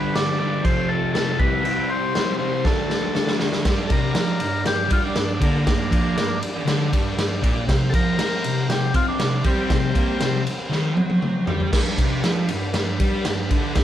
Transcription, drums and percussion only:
0.15 snare, crash
0.65 kick, crash
1.15 snare, crash
1.40 kick
1.65 crash
2.15 snare, crash
2.65 kick, snare
2.90 snare
3.15 snare
3.27 snare
3.40 snare
3.53 snare
3.65 kick, snare, ride
3.90 kick, ride
4.15 snare, ride
4.40 ride
4.65 snare, ride
4.90 kick, ride
5.16 snare, ride
5.42 kick, ride
5.67 kick, snare, ride
5.92 kick, ride
6.18 snare, ride
6.43 ride
6.67 snare, ride
6.93 kick, ride
7.18 snare, ride
7.44 kick, ride
7.69 kick, snare, ride
7.94 kick, ride
8.19 snare, ride
8.44 ride
8.70 snare, ride
8.94 kick, ride
9.20 snare, ride
9.44 kick, ride
9.70 kick, snare, ride
9.95 kick, ride
10.20 snare, ride
10.47 ride
10.72 snare
10.97 high tom
11.10 high tom
11.22 mid tom
11.47 floor tom
11.60 floor tom
11.73 kick, snare, crash
11.98 kick, ride
12.24 snare, ride
12.49 ride
12.74 snare, ride
13.00 kick, ride
13.25 snare, ride
13.51 kick, ride
13.75 kick, snare, ride

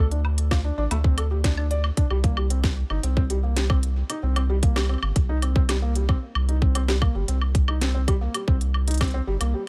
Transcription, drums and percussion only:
0.11 closed hi-hat
0.25 high woodblock
0.38 closed hi-hat
0.51 kick, snare, high woodblock
0.91 closed hi-hat, high woodblock
1.04 kick
1.18 closed hi-hat, high woodblock
1.44 kick, snare, closed hi-hat
1.57 high woodblock
1.71 closed hi-hat
1.84 high woodblock
1.97 kick, closed hi-hat
2.11 high woodblock
2.24 kick, closed hi-hat
2.37 high woodblock
2.50 closed hi-hat
2.64 kick, snare
2.90 high woodblock
3.03 closed hi-hat
3.17 kick
3.30 closed hi-hat
3.56 snare, closed hi-hat
3.70 kick, high woodblock
3.83 closed hi-hat
4.10 closed hi-hat, high woodblock
4.36 closed hi-hat, high woodblock
4.63 kick, closed hi-hat
4.76 snare, high woodblock
4.81 high woodblock
4.85 high woodblock
4.89 high woodblock
4.94 high woodblock
4.98 high woodblock
5.03 high woodblock
5.16 kick, closed hi-hat
5.42 closed hi-hat, high woodblock
5.56 kick
5.69 snare, closed hi-hat, high woodblock
5.95 closed hi-hat
6.09 kick, high woodblock
6.35 high woodblock
6.49 closed hi-hat
6.62 kick
6.75 closed hi-hat, high woodblock
6.88 snare
7.02 kick, high woodblock
7.28 closed hi-hat
7.42 high woodblock
7.55 kick, closed hi-hat
7.68 high woodblock
7.81 snare, closed hi-hat
8.08 kick, closed hi-hat, high woodblock
8.34 closed hi-hat, high woodblock
8.48 kick
8.61 closed hi-hat
8.74 high woodblock
8.88 closed hi-hat
8.91 closed hi-hat
8.94 closed hi-hat
8.98 kick, snare, closed hi-hat, high woodblock
9.04 closed hi-hat
9.07 closed hi-hat
9.11 closed hi-hat
9.41 closed hi-hat, high woodblock

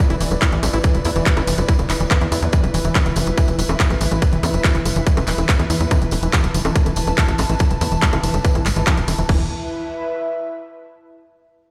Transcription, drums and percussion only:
0.10 closed hi-hat, tambourine, high bongo
0.20 open hi-hat, tambourine
0.31 closed hi-hat, tambourine, high bongo
0.42 kick, clap, closed hi-hat, tambourine
0.52 closed hi-hat, tambourine
0.63 open hi-hat, tambourine, high bongo
0.73 closed hi-hat, tambourine
0.84 kick, closed hi-hat, tambourine, high bongo
0.94 closed hi-hat, tambourine
1.05 open hi-hat, tambourine, high bongo
1.16 closed hi-hat, tambourine
1.26 kick, clap, closed hi-hat, tambourine
1.36 closed hi-hat, tambourine, high bongo
1.47 open hi-hat, tambourine
1.58 closed hi-hat, tambourine, high bongo
1.68 kick, closed hi-hat, tambourine
1.78 closed hi-hat, tambourine, high bongo
1.90 clap, open hi-hat, tambourine
2.00 closed hi-hat, tambourine
2.11 kick, clap, closed hi-hat, tambourine, high bongo
2.20 closed hi-hat, tambourine
2.32 open hi-hat, tambourine, high bongo
2.42 closed hi-hat, tambourine
2.53 kick, closed hi-hat, tambourine
2.64 closed hi-hat, tambourine, high bongo
2.74 open hi-hat, tambourine
2.84 closed hi-hat, tambourine
2.95 kick, clap, closed hi-hat, tambourine, high bongo
3.06 closed hi-hat, tambourine
3.16 open hi-hat, tambourine, high bongo
3.26 closed hi-hat, tambourine
3.37 kick, closed hi-hat, tambourine, high bongo
3.48 closed hi-hat, tambourine
3.59 open hi-hat, tambourine
3.69 closed hi-hat, tambourine, high bongo
3.80 kick, clap, closed hi-hat, tambourine
3.90 closed hi-hat, tambourine, high bongo
4.01 open hi-hat, tambourine
4.11 closed hi-hat, tambourine, high bongo
4.22 kick, closed hi-hat, tambourine
4.32 closed hi-hat, tambourine
4.43 open hi-hat, tambourine, high bongo
4.54 closed hi-hat, tambourine
4.64 kick, clap, closed hi-hat, tambourine, high bongo
4.75 closed hi-hat, tambourine
4.85 open hi-hat, tambourine, high bongo
4.96 closed hi-hat, tambourine
5.06 kick, closed hi-hat, tambourine
5.17 closed hi-hat, tambourine, high bongo
5.27 clap, open hi-hat, tambourine
5.38 closed hi-hat, tambourine, high bongo
5.49 kick, clap, closed hi-hat, tambourine
5.59 closed hi-hat, tambourine, high bongo
5.70 open hi-hat, tambourine
5.80 closed hi-hat, tambourine
5.91 kick, closed hi-hat, tambourine, high bongo
6.02 closed hi-hat, tambourine
6.11 open hi-hat, tambourine, high bongo
6.22 closed hi-hat, tambourine
6.33 kick, clap, closed hi-hat, tambourine, high bongo
6.44 closed hi-hat, tambourine
6.54 open hi-hat, tambourine
6.65 closed hi-hat, tambourine, high bongo
6.76 kick, closed hi-hat, tambourine
6.86 closed hi-hat, tambourine, high bongo
6.96 open hi-hat, tambourine
7.07 closed hi-hat, tambourine, high bongo
7.18 kick, clap, closed hi-hat, tambourine
7.28 closed hi-hat, tambourine
7.38 open hi-hat, tambourine, high bongo
7.49 closed hi-hat, tambourine
7.59 kick, closed hi-hat, tambourine, high bongo
7.70 closed hi-hat, tambourine
7.81 open hi-hat, tambourine, high bongo
7.92 closed hi-hat, tambourine
8.02 kick, clap, closed hi-hat, tambourine
8.13 closed hi-hat, tambourine, high bongo
8.23 open hi-hat, tambourine
8.34 tambourine, high bongo
8.45 kick, closed hi-hat, tambourine
8.55 closed hi-hat, tambourine, high bongo
8.66 clap, open hi-hat, tambourine
8.76 closed hi-hat, tambourine
8.87 kick, clap, closed hi-hat, tambourine, high bongo
8.97 closed hi-hat, tambourine
9.08 open hi-hat, tambourine, high bongo
9.18 closed hi-hat, tambourine
9.29 kick, crash

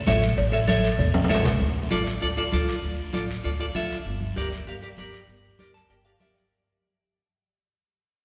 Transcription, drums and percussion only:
0.07 high conga, low conga, low timbale, short guiro
0.22 short guiro
0.37 cowbell, long guiro
0.68 high conga, short guiro
0.84 short guiro
0.99 cowbell, low conga, long guiro
1.14 high conga, high timbale
1.24 high timbale
1.29 low conga, short guiro
1.35 low timbale
1.45 low conga, low timbale, short guiro
1.60 long guiro
1.91 high conga, short guiro
2.06 short guiro
2.22 long guiro
2.52 high conga, short guiro
2.68 short guiro
2.83 long guiro
3.14 high conga, short guiro
3.30 short guiro
3.45 long guiro
3.75 high conga, short guiro
3.91 short guiro
4.06 long guiro
4.21 high conga
4.36 high conga, short guiro
4.52 short guiro
4.67 long guiro
4.98 high conga, short guiro
5.13 short guiro
5.29 long guiro
5.59 high conga, short guiro
5.75 short guiro
5.90 long guiro
6.20 high conga, short guiro
6.35 short guiro

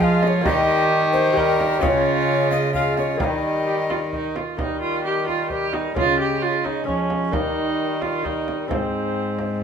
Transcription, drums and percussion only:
0.01 frame drum
0.23 frame drum
0.45 frame drum
1.14 frame drum
1.37 frame drum
1.60 frame drum
1.83 frame drum
2.51 frame drum
2.74 frame drum
2.97 frame drum
3.20 frame drum
3.90 frame drum
4.13 frame drum
4.36 frame drum
4.59 frame drum
5.28 frame drum
5.50 frame drum
5.73 frame drum
5.96 frame drum
6.65 frame drum
6.89 frame drum
7.10 frame drum
7.33 frame drum
8.02 frame drum
8.26 frame drum
8.48 frame drum
8.71 frame drum
9.39 frame drum

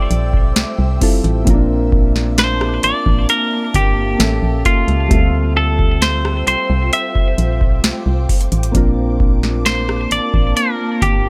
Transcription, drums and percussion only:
0.11 closed hi-hat
0.34 kick
0.56 snare, closed hi-hat
1.01 kick, closed hi-hat, open hi-hat
1.24 closed hi-hat
1.47 kick, closed hi-hat
1.92 kick
2.16 snare
2.38 snare, closed hi-hat
2.61 cross-stick
2.83 closed hi-hat
3.06 kick
3.29 closed hi-hat
3.74 kick, closed hi-hat
4.20 snare, closed hi-hat
4.65 kick, closed hi-hat
4.88 closed hi-hat
5.11 kick, closed hi-hat
5.79 kick
6.02 snare, closed hi-hat
6.25 cross-stick
6.47 closed hi-hat
6.93 closed hi-hat
7.15 kick
7.38 closed hi-hat
7.61 kick
7.84 snare, closed hi-hat
8.29 kick, closed hi-hat, open hi-hat
8.41 closed hi-hat
8.52 closed hi-hat
8.63 closed hi-hat
8.75 kick, closed hi-hat
9.20 kick
9.43 snare
9.66 snare, closed hi-hat
9.89 cross-stick
10.11 closed hi-hat
10.34 kick
10.57 closed hi-hat
11.02 kick, closed hi-hat

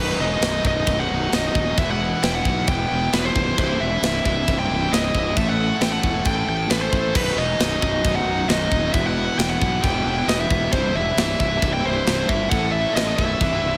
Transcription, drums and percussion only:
0.42 snare, china
0.65 kick
0.87 kick, china
1.32 snare, china
1.55 kick
1.78 kick, china
2.23 snare, china
2.45 kick
2.67 kick, china
3.13 snare, china
3.36 kick
3.58 kick, china
4.03 snare, china
4.25 kick
4.48 kick, china
4.93 snare, china
5.15 kick
5.37 kick, china
5.81 snare, china
6.03 kick
6.25 kick, china
6.70 snare, china
6.93 kick
7.15 kick, crash, china
7.60 snare, china
7.82 kick
8.05 kick, china
8.49 snare, china
8.72 kick
8.94 kick, china
9.39 snare, china
9.62 kick
9.84 kick, china
10.28 snare, china
10.50 kick
10.72 kick, china
11.17 snare, china
11.40 kick
11.62 kick, china
12.07 snare, china
12.29 kick
12.51 kick, china
12.96 snare, china
13.18 kick
13.41 kick, china

